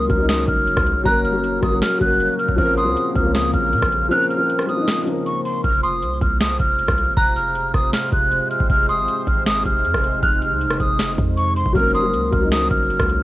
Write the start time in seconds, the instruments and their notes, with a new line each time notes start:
Already playing: ambient pad C#3 A#3 F#4 C#5, grand piano F#3 A#3 C#4 A#4
0.08 808-style bass C#2, grand piano F#3 A#3 C#4, flute F6, kick, closed hi-hat
0.12 grand piano A#4
0.17 grand piano F#3 A#3 C#4
0.22 grand piano D#4
0.29 flute D#6, snare, closed hi-hat
0.48 808-style bass F#1, flute F6, kick, closed hi-hat
0.67 closed hi-hat
0.77 808-style bass C#2, kick, cross-stick
0.86 closed hi-hat
0.96 808-style bass A#1
1.04 808-style bass F#1, grand piano F#3 A#3 C#4, synth bell A#5, flute F#6, kick, closed hi-hat
1.08 grand piano A#4
1.24 flute F6, closed hi-hat
1.32 grand piano F#3 A#3 C#4
1.44 closed hi-hat
1.61 808-style bass F#1, grand piano F#3 A#3 C#4, flute D#6, kick, cross-stick, closed hi-hat
1.65 grand piano A#4
1.70 grand piano F#3 A#3 C#4
1.75 grand piano A#4
1.82 flute F6, snare, closed hi-hat
1.99 808-style bass F#1, grand piano F#3 A#3 C#4, flute F#6, kick, closed hi-hat
2.03 grand piano A#4
2.20 closed hi-hat
2.39 flute F6, closed hi-hat
2.49 808-style bass F#1, kick
2.56 808-style bass A#1, grand piano F3 C4 C#4, ambient pad F4 C5, flute F6, kick, closed hi-hat
2.61 grand piano A#4
2.77 synth bell C6, flute D#6, closed hi-hat
2.85 808-style bass C#2, grand piano F3 C4 C#4
2.89 grand piano A#4
2.97 closed hi-hat
3.14 808-style bass C#2, grand piano F3 C4 C#4, flute F6, kick, closed hi-hat
3.18 grand piano A#4
3.23 grand piano F3 C4 C#4
3.27 grand piano A#4
3.35 flute D#6, snare, closed hi-hat
3.54 808-style bass A#1, flute F6, kick, closed hi-hat
3.73 808-style bass A#2, closed hi-hat
3.83 808-style bass A#1, kick, cross-stick
3.92 closed hi-hat
4.09 grand piano F3 C4 C#4, synth bell F6, flute F#6, closed hi-hat
4.13 grand piano A#4
4.30 flute F6, closed hi-hat
4.37 grand piano F3 C4 C#4
4.42 grand piano A#4
4.49 closed hi-hat
4.59 cross-stick
4.66 grand piano F3 C4 C#4, flute D#6, closed hi-hat
4.71 grand piano A#4
4.76 grand piano F3 C4 C#4
4.81 grand piano D#4
4.88 snare, closed hi-hat
5.05 grand piano F3 C4 C#4, closed hi-hat
5.09 grand piano A#4
5.26 flute C#6, closed hi-hat
5.45 flute C6, open hi-hat
5.64 808-style bass F1, ambient pad C3 G#3 F4 C5, flute F6, kick, closed hi-hat
5.83 synth bell C6, flute D#6, closed hi-hat
6.02 808-style bass C2, closed hi-hat
6.21 808-style bass C2, flute F6, kick, closed hi-hat
6.40 flute D#6, snare, closed hi-hat
6.60 808-style bass F1, flute F6, kick, closed hi-hat
6.79 closed hi-hat
6.88 808-style bass C2, kick, cross-stick
6.98 closed hi-hat
7.07 808-style bass G#1
7.17 808-style bass F1, synth bell A#5, flute F#6, kick, closed hi-hat
7.36 flute F6, closed hi-hat
7.55 closed hi-hat
7.74 808-style bass F1, flute D#6, kick, cross-stick, closed hi-hat
7.93 flute F6, snare, closed hi-hat
8.12 808-style bass F1, flute F#6, kick, closed hi-hat
8.32 closed hi-hat
8.51 flute F6, closed hi-hat
8.60 808-style bass F1, kick
8.70 808-style bass F1, ambient pad D#4, flute F6, kick, closed hi-hat
8.89 synth bell C6, flute D#6, closed hi-hat
8.99 808-style bass G#1
9.08 closed hi-hat
9.27 808-style bass G#1, flute F6, kick, closed hi-hat
9.46 flute D#6, snare, closed hi-hat
9.65 808-style bass F1, flute F6, kick, closed hi-hat
9.84 808-style bass F2, closed hi-hat
9.94 808-style bass F1, kick, cross-stick
10.04 closed hi-hat
10.22 808-style bass F1, synth bell F6, flute F#6, kick, closed hi-hat
10.42 flute F6, closed hi-hat
10.51 808-style bass C2
10.61 closed hi-hat
10.66 808-style bass F1
10.70 cross-stick
10.80 808-style bass F1, flute D#6, kick, closed hi-hat
10.99 snare, closed hi-hat
11.18 808-style bass F2, kick, closed hi-hat
11.37 flute C#6, closed hi-hat
11.56 flute C6, open hi-hat
11.66 808-style bass F1, kick
11.73 808-style bass F#1, ambient pad C#3 A#3 F#4 C#5, grand piano F#3 A#3 C#4, flute F6, kick, closed hi-hat
11.78 grand piano A#4
11.95 synth bell C6, flute D#6, closed hi-hat
12.02 grand piano F#3 A#3 C#4
12.06 grand piano A#4
12.14 808-style bass C#2, closed hi-hat
12.31 808-style bass C#2, grand piano F#3 A#3 C#4, flute F6, kick, closed hi-hat
12.35 grand piano A#4
12.40 grand piano F#3 A#3 C#4
12.45 grand piano D#4
12.52 flute D#6, snare, closed hi-hat
12.71 808-style bass F#1, flute F6, kick, closed hi-hat
12.90 closed hi-hat
13.00 808-style bass C#2, kick, cross-stick
13.09 closed hi-hat
13.19 808-style bass A#1